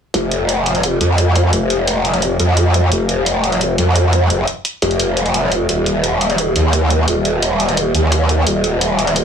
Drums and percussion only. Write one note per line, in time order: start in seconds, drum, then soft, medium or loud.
0.14 closed hi-hat medium
0.31 closed hi-hat medium
0.49 closed hi-hat medium
0.66 closed hi-hat medium
0.75 closed hi-hat soft
0.83 closed hi-hat medium
1.01 closed hi-hat medium
1.18 closed hi-hat medium
1.36 closed hi-hat medium
1.53 closed hi-hat medium
1.70 closed hi-hat medium
1.87 closed hi-hat medium
2.05 closed hi-hat medium
2.14 closed hi-hat soft
2.22 closed hi-hat medium
2.40 closed hi-hat medium
2.57 closed hi-hat medium
2.74 closed hi-hat medium
2.92 closed hi-hat medium
3.09 closed hi-hat medium
3.26 closed hi-hat medium
3.44 closed hi-hat medium
3.52 closed hi-hat soft
3.61 closed hi-hat medium
3.78 closed hi-hat medium
3.96 closed hi-hat medium
4.13 closed hi-hat medium
4.30 closed hi-hat medium
4.47 closed hi-hat medium
4.65 closed hi-hat medium
4.82 closed hi-hat medium
4.91 closed hi-hat soft
5.00 closed hi-hat medium
5.17 closed hi-hat medium
5.26 closed hi-hat soft
5.34 closed hi-hat medium
5.52 closed hi-hat medium
5.69 closed hi-hat medium
5.86 closed hi-hat medium
6.04 closed hi-hat medium
6.21 closed hi-hat medium
6.30 closed hi-hat soft
6.38 closed hi-hat medium
6.56 closed hi-hat medium
6.73 closed hi-hat medium
6.90 closed hi-hat medium
7.08 closed hi-hat medium
7.25 closed hi-hat medium
7.42 closed hi-hat medium
7.60 closed hi-hat medium
7.69 closed hi-hat soft
7.77 closed hi-hat medium
7.95 closed hi-hat medium
8.12 closed hi-hat medium
8.29 closed hi-hat medium
8.47 closed hi-hat medium
8.64 closed hi-hat medium
8.81 closed hi-hat medium
8.99 closed hi-hat medium
9.07 closed hi-hat soft
9.16 closed hi-hat medium